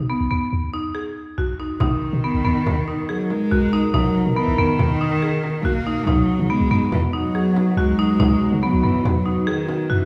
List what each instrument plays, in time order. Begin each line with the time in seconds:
0.10 marimba B3
0.21 sub bass B1
0.31 sub bass D#2, marimba B3
0.53 sub bass D#2
0.74 marimba D#4
0.95 marimba G#4
1.38 sub bass B1, marimba F#4
1.60 marimba D#4
1.80 sub bass B1, ambient pad B2 D#4 A#4, cello D#3, marimba D#4, frame drum
2.13 sub bass B2
2.24 marimba B3
2.34 sub bass B1
2.45 sub bass D#2, marimba B3
2.66 sub bass D#2, frame drum
2.88 marimba D#4
3.09 cello F#3, marimba G#4
3.30 cello G#3, frame drum
3.51 sub bass B1, marimba F#4
3.73 marimba D#4
3.94 sub bass B1, cello F#3, marimba D#4, frame drum
4.26 sub bass B2
4.36 cello E3, marimba B3
4.48 sub bass B1
4.58 sub bass D#2, cello D#3, marimba B3
4.79 sub bass D#2, frame drum
5.01 marimba D#4
5.22 marimba G#4
5.43 frame drum
5.63 sub bass B1, cello A#3, marimba F#4
5.87 marimba D#4
6.07 sub bass C#2, ambient pad F#3 B3 D#4 F#4, cello F#3, marimba D#4, frame drum
6.39 sub bass C#3
6.49 cello G#3, marimba B3
6.60 sub bass C#2
6.71 sub bass F#2, marimba B3
6.92 sub bass E2, cello E3, frame drum
7.13 cello F#3, marimba D#4
7.35 marimba G#4
7.56 frame drum
7.77 sub bass C#2, cello G#3, marimba F#4
7.99 marimba D#4
8.20 sub bass C#2, marimba D#4, frame drum
8.42 frame drum
8.52 sub bass C#3
8.62 cello F#3, marimba B3, frame drum
8.73 sub bass C#2
8.83 sub bass F#2, cello E3, marimba B3
9.05 sub bass E2, cello F#3, frame drum
9.26 marimba D#4, frame drum
9.47 cello D#3, marimba G#4
9.69 frame drum
9.90 sub bass F#2, cello E3, marimba F#4